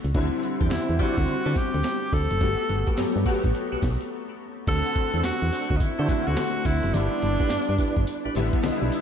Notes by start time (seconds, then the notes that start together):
Already playing: D3 A3 B3 F#4
0.04 C#2, closed hi-hat
0.14 D2 D3 F#3 C4 E4, kick, closed hi-hat
0.21 G3
0.43 closed hi-hat
0.60 E2 E4 G4 C5 D5, kick, closed hi-hat
0.71 E2 D3 G3 C4 E4 G4, snare, clap, closed hi-hat
0.89 E2
0.99 D3 G3 C4 E4 F#4 G4 C5 D5, kick, closed hi-hat
1.18 D2, kick, closed hi-hat
1.28 D3, closed hi-hat
1.45 D3 E4 G4 C5 D5
1.56 G4, kick, snare, closed hi-hat
1.74 D2, closed hi-hat
1.84 snare, clap, closed hi-hat
2.13 D2 A4, kick, open hi-hat
2.31 F#1, closed hi-hat
2.41 G1 A3 B3 F#4 G4, kick, closed hi-hat
2.69 G1, closed hi-hat
2.87 F#4 G4 A4 B4, kick, closed hi-hat
2.97 G2 F#3 A3 B3 G4, snare, clap, closed hi-hat
3.16 G2
3.26 A3 B3 F#4 G4 A4 B4, kick, open hi-hat
3.44 A1, kick, closed hi-hat
3.55 closed hi-hat
3.72 B1 F#4 G4 A4 B4
3.82 B1, kick, snare, closed hi-hat
4.01 closed hi-hat
4.67 D2 D3 A3 C4 F#4 A4, kick, closed hi-hat, crash, tambourine
4.96 kick, closed hi-hat
5.13 E2 D4 F#4 A4 C5, closed hi-hat
5.24 E2 F#4, snare, clap, closed hi-hat, tambourine
5.42 E2
5.52 D4 F#4 A4 C5, open hi-hat, tambourine
5.70 D2, kick, closed hi-hat
5.77 D#4, kick
5.81 D3 E4, closed hi-hat, tambourine
5.98 D3 D4 F#4 A4 C5
6.08 D3 A3 C4 F#4, kick, closed hi-hat, tambourine
6.27 D2 F#4, closed hi-hat
6.37 D3 A3 C4 F#4, snare, clap, closed hi-hat, tambourine
6.65 D2 E4, kick, closed hi-hat, tambourine
6.83 F#1, closed hi-hat
6.94 G1 D3 G3 A#3 D4 E4, closed hi-hat, tambourine
7.01 B3
7.22 G1, closed hi-hat
7.40 D4 E4 G4 B4, kick, closed hi-hat
7.50 G2, snare, clap, closed hi-hat, tambourine
7.69 G2
7.78 D4 E4 G4 B4, kick, open hi-hat, tambourine
7.96 G1, kick, closed hi-hat
8.07 closed hi-hat, tambourine
8.25 A1 D4 E4 G4 B4
8.35 A1 D3 G3 B3 E4, closed hi-hat, tambourine
8.53 kick, closed hi-hat
8.64 B1 D3 G3 B3 D#4, snare, clap, closed hi-hat, tambourine
8.71 E4
8.82 B1
8.92 closed hi-hat, tambourine